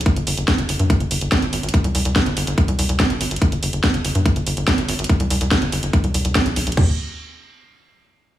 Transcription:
<<
  \new Staff \with { instrumentName = "Analog synth bass" } { \clef bass \time 4/4 \tempo 4 = 143 r16 g,,16 g,,16 g,,16 r16 g,,16 g,,16 g,16 r16 g,,16 g,,16 g,,16 r16 aes,,16 aes,,16 aes,,16 | r16 c,16 c,16 c,16 r16 g,,16 g,,16 g,,16 r16 c,16 c,16 c,16 r16 aes,,16 aes,,16 aes,,16 | r16 g,,16 g,,16 g,,16 r16 g,,16 g,,16 g,16 r16 g,,16 g,,16 g,,16 r16 aes,,16 aes,,16 aes,,16 | r16 c,16 c,16 c,16 r16 g,,16 g,,16 g,,16 r16 c,16 c,16 c,16 r16 b,,16 b,,16 b,,16 |
g,,8 r2. r8 | }
  \new DrumStaff \with { instrumentName = "Drums" } \drummode { \time 4/4 <hh bd>16 hh16 hho16 hh16 <hh bd sn>16 hh16 hho16 hh16 <hh bd>16 hh16 hho16 hh16 <hh bd sn>16 hh16 hho16 hh32 hh32 | <hh bd>16 hh16 hho16 hh16 <hh bd sn>16 hh16 hho16 hh16 <hh bd>16 hh16 hho16 hh16 <hh bd sn>16 hh16 hho16 hh32 hh32 | <hh bd>16 hh16 hho16 hh16 <hh bd sn>16 hh16 hho16 hh16 <hh bd>16 hh16 hho16 hh16 <hh bd sn>16 hh16 hho16 hh32 hh32 | <hh bd>16 hh16 hho16 hh16 <hh bd sn>16 hh16 hho16 hh16 <hh bd>16 hh16 hho16 hh16 <hh bd sn>16 hh16 hho16 hh32 hh32 |
<cymc bd tomfh>4 r4 r4 r4 | }
>>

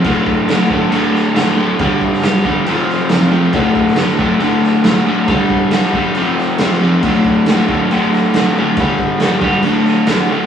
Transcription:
<<
  \new Staff \with { instrumentName = "Overdriven electric guitar" } { \clef bass \time 4/4 \key g \major \tempo 4 = 138 <d, a, d>4 <d, a, d>8 <d, a, d>8 <d, a, d>4 <d, a, d>8 <d, a, d>8 | <g, d g>4 <g, d g>8 <g, d g>8 <f, c f>4 <f, c f>8 <f, c f>8 | <d, a, d>4 <d, a, d>8 <d, a, d>8 <d, a, d>4 <d, a, d>8 <d, a, d>8 | <g, d g>4 <g, d g>8 <g, d g>8 <f, c f>4 <f, c f>8 <f, c f>8 |
<d, a, d>4 <d, a, d>8 <d, a, d>8 <d, a, d>4 <d, a, d>8 <d, a, d>8 | <g, d g>4 <g, d g>8 <g, d g>8 <d, a, d>4 <d, a, d>8 <d, a, d>8 | }
  \new DrumStaff \with { instrumentName = "Drums" } \drummode { \time 4/4 <cymc bd>8 bd8 <cymc sn>8 bd8 cymc8 sn8 <cymc sn>4 | <cymc bd>8 bd16 sn16 <cymc sn>8 bd8 cymc8 sn8 <cymc sn>4 | <cymc bd>8 bd16 sn16 <cymc sn>8 bd8 cymc8 sn8 <cymc sn>4 | <cymc bd>8 bd8 <cymc sn>8 bd8 cymc8 sn8 <cymc sn>4 |
<cymc bd>8 bd8 <cymc sn>8 bd8 cymc8 sn8 <cymc sn>4 | <cymc bd>8 bd8 <cymc sn>8 bd8 cymc8 sn8 <cymc sn>4 | }
>>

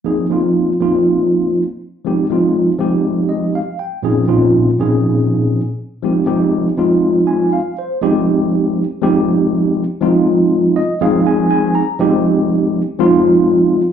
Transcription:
\new Staff \with { instrumentName = "Tine electric piano" } { \time 4/4 \key f \minor \tempo 4 = 120 << { r1 | r2 r8 ees''8 f''8 g''8 | r1 | r2 r8 aes''8 f''8 c''8 |
r1 | r4. ees''8 f''8 aes''8 aes''8 bes''8 | r1 | } \\ { <f bes c' ees' aes'>8 <f bes c' ees' f'>4 <f bes c' ees' f'>4. r4 | <f aes c' ees' g'>8 <f aes c' ees' f'>4 <f aes c' ees' g'>4. r4 | <bes, f c' des' ees' aes'>8 <bes, f c' des' ees' f'>4 <bes, f c' des' ees' aes'>4. r4 | <f aes c' ees' g'>8 <f aes c' ees' g'>4 <f aes c' ees' f'>4. r4 |
<f aes c' ees' g'>4. r8 <f aes c' ees' g'>4. r8 | <f aes c' ees' f'>4. r8 <f aes c' ees' aes'>4. r8 | <f aes c' ees' g'>4. r8 <f aes c' ees' f'>4. r8 | } >> }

